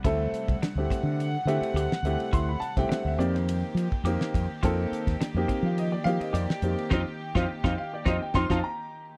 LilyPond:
<<
  \new Staff \with { instrumentName = "Grand piano" } { \time 4/4 \key f \mixolydian \tempo 4 = 105 << { b''4~ b''16 r2 r8. | c'''16 b''16 a''16 g''16 fis''16 e''16 d''16 c''2~ c''16~ | c''16 r4. f''16 ees''16 d''16 f''16 ees''16 d''4 | <c' ees' f'>16 r8 <c' ees' f'>16 r16 <c' ees' f' g''>16 f''16 d''16 <c' ees' f' ees''>16 g''16 <c' ees' f' c'''>16 <c' ees' f' a''>16 <a'' bes''>8. r16 | } \\ { <a c' e' a'>4 r16 <a c' e' g'>4 r16 <a c' e' g'>8. r16 <a c' e' g'>8~ | <a c' e' g'>8 r16 <a c' e' g'>8. <bes c' ees' g'>4~ <bes c' ees' g'>16 r16 <bes c' ees' g'>8. r16 | <bes c' ees' a'>4 r16 <bes c' ees' g'>4 r16 <bes c' ees' g'>8. r16 <bes c' ees' g'>8 | r1 | } >> }
  \new Staff \with { instrumentName = "Clean electric guitar" } { \time 4/4 \key f \mixolydian e'8 r8 d'8 c'8 r4 g'8 r8 | e'8 r8 d'8 c'8 r4 g'8 r8 | f'8 r8 d'8 c'8 r4 g'8 r8 | <c' ees' f'>16 r8 <c' ees' f'>16 r16 <c' ees' f'>16 r8 <c' ees' f'>16 r16 <c' ees' f'>16 <c' ees' f'>16 r4 | }
  \new Staff \with { instrumentName = "String section" } { \clef bass \time 4/4 \key f \mixolydian <c g fis''>1~ | <c g fis''>4. <ees bes g'>2~ <ees bes g'>8~ | <ees bes g'>1~ | <ees bes g'>1 | }
  \new Staff \with { instrumentName = "Fretless electric bass" } { \clef bass \time 4/4 \key f \mixolydian d,8 r16 c,16 r16 d,16 r16 d8. d16 r16 d,16 r16 d,16 r16 | d,8 r16 c,16 r16 d,16 f,4 f16 r16 f,16 r16 f,16 r16 | f,8 r16 ees,16 r16 f,16 r16 f8. f16 r16 f,16 r16 f,16 r16 | f,16 r8 f,16 r16 f,16 r8 f,16 r16 f,16 f,16 r4 | }
  \new DrumStaff \with { instrumentName = "Drums" } \drummode { \time 4/4 <hhp bd cymr>8 <hhp cymr>16 <bd cymr>16 <hhp cymr sn>8 <hhp bd cymr>8 <hhp cymr>8 <hhp cymr>16 cymr16 <hhp cymr>16 sn16 <hhp cymr>16 cymr16 | <hhp bd cymr>8 <hhp cymr>16 <bd cymr sn>16 <hhp cymr sn>8 <hhp cymr>16 <cymr sn>16 <hhp cymr>8 <hhp cymr>16 bd16 <hhp cymr>16 sn16 <hhp bd cymr>8 | <hhp bd cymr>8 <hhp cymr>16 <bd cymr sn>16 <hhp cymr sn>8 <hhp bd cymr>8 <hhp cymr>8 <hhp cymr>16 cymr16 <hhp cymr>16 sn16 <hhp cymr>16 cymr16 | <bd sn>8. <bd sn>16 r16 <bd sn>8. <bd sn>8 <bd sn>16 <bd sn>16 r4 | }
>>